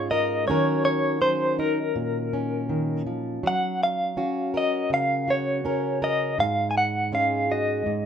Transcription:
Already playing: steel-string acoustic guitar G#2 G#3 C#4 F4, clean electric guitar C#5
0.11 steel-string acoustic guitar A#4, clean electric guitar D#5
0.48 steel-string acoustic guitar D#3 F#3 C#4 F#4 A#4, clean electric guitar C#5
0.85 clean electric guitar C#5
1.21 steel-string acoustic guitar F#3 C#4, clean electric guitar C5
1.59 steel-string acoustic guitar D#4, clean electric guitar A#4
1.96 steel-string acoustic guitar A#2
2.33 steel-string acoustic guitar C#4
2.69 steel-string acoustic guitar D#3
3.06 steel-string acoustic guitar F3
3.43 steel-string acoustic guitar F#3
3.47 clean electric guitar F#5
3.83 clean electric guitar F5
4.17 steel-string acoustic guitar C#4 F#4
4.54 steel-string acoustic guitar A#4, clean electric guitar D#5
4.90 steel-string acoustic guitar C#3, clean electric guitar F5
5.28 steel-string acoustic guitar F#4, clean electric guitar C#5
5.65 steel-string acoustic guitar C#4 A#4
6.02 steel-string acoustic guitar A#4, clean electric guitar D#5
6.38 steel-string acoustic guitar G#2, clean electric guitar F5
6.71 clean electric guitar G#5
6.78 clean electric guitar F#5
7.12 steel-string acoustic guitar G#3 C#4, clean electric guitar F5
7.51 steel-string acoustic guitar F#4, clean electric guitar D#5
7.86 steel-string acoustic guitar G#2

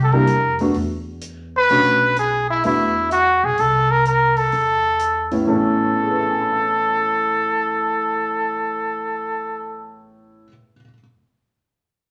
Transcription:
Already playing: upright bass C2
0.04 trumpet A4
0.12 grand piano G3 A#3 D4 E4, trumpet A#4, kick
0.27 upright bass F2, closed hi-hat
0.59 grand piano A3 B3 D4 F#4, open hi-hat
0.74 upright bass E2, open hi-hat
1.21 closed hi-hat
1.57 trumpet B4
1.69 upright bass B1, grand piano A3 C#4 D4 F#4, open hi-hat
2.16 trumpet G#4, closed hi-hat
2.50 trumpet E4
2.64 upright bass E2, grand piano A3 B3 D4 F#4, trumpet E4, open hi-hat
3.11 trumpet F#4, closed hi-hat
3.43 upright bass B1, trumpet G#4
3.58 upright bass C2, trumpet A4, open hi-hat
3.91 trumpet A#4
4.05 trumpet A#4, closed hi-hat
4.37 trumpet A4, open hi-hat
4.52 upright bass E2, open hi-hat
4.99 closed hi-hat
5.31 grand piano A2 A3 B3 C#4 E4, open hi-hat
5.47 upright bass A1, grand piano A2 E3 B3 C#4, trumpet A4
5.96 grand piano E4
6.03 grand piano G#4
6.11 grand piano B4
6.20 grand piano E5
6.30 grand piano G#5
6.41 grand piano B5
6.52 grand piano E6

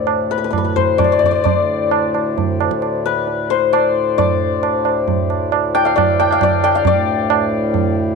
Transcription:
Already playing: harmonium D2 A2, santur C5 D5 E5
0.07 tabla na
0.31 santur B4
0.38 santur B4
0.44 santur B4
0.50 santur B4, tabla na, tabla ge
0.58 santur B4
0.65 santur B4
0.76 santur C5, tabla ge
0.98 santur D5, tabla na, tabla ge
1.04 santur D5
1.12 santur D5
1.19 santur D5
1.23 santur D5, tabla ge
1.31 santur D5
1.44 harmonium D2 A2, santur D5, tabla tin, tabla ge
1.91 tabla na
2.15 tabla na
2.38 tabla tin, tabla ge
2.60 tabla na
2.71 tabla ke
2.82 tabla na
3.06 santur B4
3.27 tabla tin
3.50 santur C5
3.73 santur D5, tabla na
4.18 santur D5, tabla tin, tabla ge
4.63 tabla na
4.85 tabla na
5.08 tabla tin, tabla ge
5.30 tabla na
5.52 tabla na
5.75 santur G5, tabla na
5.85 santur F5, tabla na
5.96 santur D5, tabla na, tabla ge
6.20 santur G5, tabla na
6.31 santur F5, tabla na
6.41 santur D5, tabla na, tabla ge
6.64 santur G5, tabla na
6.75 santur F5, tabla na
6.85 harmonium D2 A2, santur D5, tabla tin, tabla ge
7.30 tabla na
7.74 tabla tin, tabla ge

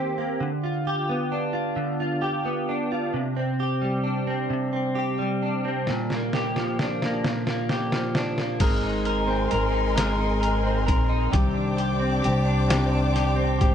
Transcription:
Already playing: clean electric guitar D#3 A#3 C4 G4 C5
0.18 clean electric guitar A#3
0.40 clean electric guitar D3
0.64 clean electric guitar F4
0.87 clean electric guitar G4
1.09 clean electric guitar B3
1.32 clean electric guitar D4
1.53 clean electric guitar F4
1.76 clean electric guitar D3
2.00 clean electric guitar F4
2.22 clean electric guitar G4
2.45 clean electric guitar B3
2.69 clean electric guitar D4
2.92 clean electric guitar F4
3.14 clean electric guitar C3
3.37 clean electric guitar C4
3.60 clean electric guitar G4
3.82 clean electric guitar G3
4.04 clean electric guitar D4
4.27 clean electric guitar C4
4.50 clean electric guitar C3
4.73 clean electric guitar C4
4.95 clean electric guitar G4
5.19 clean electric guitar G3
5.42 clean electric guitar D4
5.65 clean electric guitar C4
5.87 clean electric guitar A#2, snare
6.10 clean electric guitar A#3, snare
6.33 clean electric guitar G4, snare
6.56 clean electric guitar F3, snare
6.79 clean electric guitar D4, snare
7.02 clean electric guitar A#3, snare
7.24 clean electric guitar A#2, snare
7.47 clean electric guitar A#3, snare
7.69 clean electric guitar G4, snare
7.92 clean electric guitar F3, snare
8.15 clean electric guitar D4, snare
8.38 clean electric guitar A#3, snare
8.60 upright bass G#1, steel-string acoustic guitar G#3 C4 D#4 A#4, clean electric guitar G#3 A#4, string section A#4 D#5 G#5 C6, kick, closed hi-hat, crash
8.83 clean electric guitar D#4
9.05 clean electric guitar A#4, closed hi-hat
9.27 clean electric guitar C4
9.51 upright bass G#1, steel-string acoustic guitar G#3 C4 D#4 A#4, clean electric guitar A#4, closed hi-hat
9.72 clean electric guitar D#4
9.96 clean electric guitar G#3 A#4, steel-string acoustic guitar G#3 C4 D#4 A#4, snare, closed hi-hat
10.18 clean electric guitar D#4
10.41 clean electric guitar A#4, closed hi-hat
10.63 clean electric guitar C4
10.86 upright bass A#1, steel-string acoustic guitar C4 D#4 A#4, clean electric guitar A#4, kick, closed hi-hat
11.09 clean electric guitar D#4
11.32 upright bass C2, clean electric guitar C3 G4, steel-string acoustic guitar C3 D#3 G3 C4 D4 G4, string section C5 D5 G5 D6, kick, closed hi-hat
11.54 clean electric guitar D4
11.77 clean electric guitar G4, closed hi-hat
12.00 clean electric guitar C4
12.22 upright bass C2, steel-string acoustic guitar G3 C4 D4, clean electric guitar G4, closed hi-hat
12.26 steel-string acoustic guitar G4
12.45 clean electric guitar D4
12.68 clean electric guitar C3 G4, steel-string acoustic guitar D#3 G3 C4 D4 G4, snare, closed hi-hat
12.72 steel-string acoustic guitar C3
12.92 clean electric guitar D4
13.14 clean electric guitar G4, snare, closed hi-hat
13.36 clean electric guitar C4
13.59 upright bass G#1, steel-string acoustic guitar D4 G4, clean electric guitar G4, kick, closed hi-hat
13.63 steel-string acoustic guitar G3 C4

